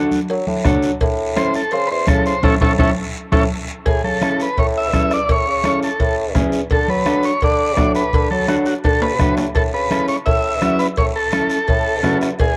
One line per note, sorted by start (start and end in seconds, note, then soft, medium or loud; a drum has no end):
0.00 0.19 D4 medium
0.00 0.19 F#4 medium
0.00 0.19 A4 medium
0.11 high conga medium
0.11 short guiro medium
0.28 0.44 F#3 loud
0.28 cowbell medium
0.28 high conga soft
0.28 long guiro medium
0.47 0.62 A2 medium
0.47 high conga medium
0.65 0.94 F#3 medium
0.65 0.90 D4 medium
0.65 0.90 F#4 medium
0.65 0.90 A4 loud
0.65 bombo low medium
0.65 bombo rim medium
0.65 high conga medium
0.65 low conga medium
0.65 low timbale medium
0.65 short guiro medium
0.82 short guiro medium
1.01 1.58 A2 loud
1.01 bombo low medium
1.01 cowbell loud
1.01 high conga soft
1.01 long guiro medium
1.36 1.61 C#4 medium
1.36 1.61 E4 medium
1.36 1.61 A4 medium
1.36 1.54 C5 loud
1.36 bombo rim medium
1.36 high conga medium
1.36 short guiro medium
1.54 1.72 A4 medium
1.54 short guiro medium
1.71 1.87 C#3 loud
1.71 1.90 C5 medium
1.71 cowbell medium
1.71 high conga soft
1.71 long guiro medium
1.87 2.05 E2 loud
1.87 1.89 B4 medium
1.92 2.08 C5 loud
2.07 2.37 C#3 medium
2.07 2.32 C#4 medium
2.07 2.33 E4 medium
2.07 2.25 A4 medium
2.07 2.33 A4 medium
2.07 bombo low medium
2.07 bombo rim medium
2.07 high conga medium
2.07 short guiro medium
2.26 2.43 C5 medium
2.26 short guiro medium
2.43 2.57 A2 medium
2.43 2.55 C#4 loud
2.43 2.55 E4 loud
2.43 2.55 A4 loud
2.43 2.55 C#5 loud
2.43 2.55 E5 loud
2.43 bombo low medium
2.43 high conga loud
2.43 high timbale medium
2.43 long guiro loud
2.60 2.75 A2 medium
2.60 2.73 C#4 medium
2.60 2.73 E4 medium
2.60 2.73 A4 loud
2.60 2.73 A4 medium
2.60 2.73 C#5 loud
2.60 2.73 E5 medium
2.60 bombo low loud
2.60 high conga loud
2.60 high timbale loud
2.60 long guiro medium
2.78 2.93 A2 loud
2.78 2.90 C#4 loud
2.78 2.90 E4 loud
2.78 2.90 A4 loud
2.78 2.90 A4 medium
2.78 2.90 C#5 loud
2.78 2.91 E5 loud
2.78 bombo low loud
2.78 high conga loud
2.78 high timbale loud
2.78 long guiro loud
3.32 3.46 A2 loud
3.32 3.44 C#4 loud
3.32 3.44 E4 loud
3.32 3.44 A4 loud
3.32 3.43 C#5 loud
3.32 3.44 E5 loud
3.32 bombo low loud
3.32 high conga loud
3.32 high timbale loud
3.32 long guiro loud
3.86 4.01 A2 loud
3.86 4.02 G#4 medium
3.86 bombo low medium
3.86 cowbell loud
3.86 high conga soft
3.86 long guiro medium
4.03 4.46 C#3 medium
4.03 4.41 A4 medium
4.03 high conga medium
4.21 4.46 C#4 medium
4.21 4.47 E4 medium
4.21 4.47 A4 medium
4.21 bombo rim medium
4.21 high conga medium
4.21 short guiro medium
4.40 4.59 B4 medium
4.40 short guiro medium
4.57 4.95 A2 loud
4.57 4.67 C#5 medium
4.57 bombo low medium
4.57 cowbell medium
4.57 high conga soft
4.57 long guiro medium
4.78 5.13 E5 loud
4.93 5.22 E2 medium
4.93 5.18 C#4 medium
4.93 5.18 E4 medium
4.93 5.18 A4 medium
4.93 bombo low medium
4.93 bombo rim medium
4.93 high conga medium
4.93 short guiro medium
5.11 5.30 D5 loud
5.11 bombo rim medium
5.11 short guiro medium
5.29 5.43 A2 medium
5.29 5.80 C#5 loud
5.29 bombo low medium
5.29 cowbell medium
5.29 high conga soft
5.29 long guiro medium
5.48 5.90 C#3 medium
5.64 5.89 C#4 medium
5.64 5.89 E4 medium
5.64 5.89 A4 medium
5.64 bombo rim medium
5.64 high conga loud
5.64 short guiro medium
5.83 6.16 A4 medium
5.83 short guiro medium
6.00 6.37 A2 loud
6.00 bombo low medium
6.00 cowbell medium
6.00 high conga soft
6.00 long guiro medium
6.35 6.64 E2 medium
6.35 6.60 C#4 medium
6.35 6.60 E4 medium
6.35 6.60 G#4 loud
6.35 bombo low medium
6.35 bombo rim medium
6.35 high conga medium
6.35 low conga medium
6.35 low timbale medium
6.35 short guiro medium
6.52 short guiro medium
6.70 6.85 D3 loud
6.70 6.90 A4 medium
6.70 bombo low medium
6.70 cowbell medium
6.70 high conga soft
6.70 long guiro medium
6.88 7.32 F#3 medium
6.88 7.26 B4 medium
6.88 high conga medium
7.05 7.31 D4 medium
7.05 7.31 F#4 medium
7.05 7.31 A4 medium
7.05 bombo rim medium
7.05 high conga medium
7.05 short guiro medium
7.23 7.43 C#5 medium
7.23 short guiro medium
7.41 7.79 D3 loud
7.41 7.92 D5 loud
7.41 bombo low medium
7.41 cowbell medium
7.41 high conga soft
7.41 long guiro medium
7.76 8.06 A2 medium
7.76 8.02 D4 medium
7.76 8.02 F#4 medium
7.76 8.02 A4 medium
7.76 bombo low medium
7.76 bombo rim medium
7.76 high conga medium
7.76 low timbale medium
7.76 short guiro medium
7.95 8.28 B4 loud
7.95 short guiro medium
8.13 8.28 D3 medium
8.13 bombo low medium
8.13 cowbell loud
8.13 high conga soft
8.13 long guiro medium
8.31 8.74 F#3 medium
8.31 8.47 A4 medium
8.31 high conga medium
8.48 8.73 D4 medium
8.48 8.73 F#4 medium
8.48 8.57 F#4 medium
8.48 8.74 A4 medium
8.48 bombo rim medium
8.48 high conga medium
8.48 short guiro medium
8.65 8.74 F#4 medium
8.65 short guiro medium
8.84 9.22 D3 loud
8.84 9.01 A4 medium
8.84 bombo low medium
8.84 cowbell medium
8.84 high conga soft
8.84 high timbale medium
8.84 long guiro medium
9.02 9.35 B4 medium
9.02 low timbale loud
9.19 9.48 A2 medium
9.19 9.44 D4 medium
9.19 9.45 F#4 medium
9.19 9.45 A4 medium
9.19 bombo low medium
9.19 bombo rim medium
9.19 high conga medium
9.19 low conga medium
9.19 short guiro medium
9.37 bombo rim medium
9.37 low timbale medium
9.37 short guiro medium
9.55 9.70 A2 medium
9.55 9.63 A4 medium
9.55 bombo low medium
9.55 cowbell loud
9.55 high conga soft
9.55 long guiro medium
9.73 10.16 C#3 medium
9.73 10.07 B4 loud
9.90 10.15 C#4 medium
9.90 10.16 E4 medium
9.90 10.16 A4 medium
9.90 bombo rim medium
9.90 high conga medium
9.90 short guiro medium
10.08 10.16 C#5 medium
10.08 short guiro medium
10.26 10.63 A2 loud
10.26 10.81 E5 loud
10.26 bombo low medium
10.26 cowbell medium
10.26 high conga soft
10.26 long guiro medium
10.61 10.90 E2 medium
10.61 10.86 C#4 medium
10.61 10.87 E4 medium
10.61 10.87 F#4 medium
10.61 bombo rim medium
10.61 high conga medium
10.61 short guiro medium
10.79 10.87 B4 loud
10.79 short guiro medium
10.96 11.12 A2 medium
10.96 11.06 C#5 loud
10.96 bombo low medium
10.96 cowbell medium
10.96 high conga soft
10.96 long guiro medium
11.16 12.18 A4 loud
11.32 11.58 C#4 medium
11.32 11.58 E4 medium
11.32 11.58 A4 medium
11.32 bombo rim medium
11.32 high conga medium
11.32 short guiro medium
11.50 short guiro medium
11.68 12.05 A2 loud
11.68 bombo low medium
11.68 cowbell medium
11.68 high conga soft
11.68 long guiro medium
12.03 12.32 E2 medium
12.03 12.28 C#4 medium
12.03 12.28 E4 medium
12.03 12.29 F#4 loud
12.03 bombo rim medium
12.03 high conga medium
12.03 low conga medium
12.03 short guiro medium
12.21 bombo rim medium
12.21 short guiro medium
12.39 12.54 E2 loud
12.39 12.57 G#4 loud
12.39 bombo low medium
12.39 cowbell loud
12.39 high conga soft
12.39 long guiro medium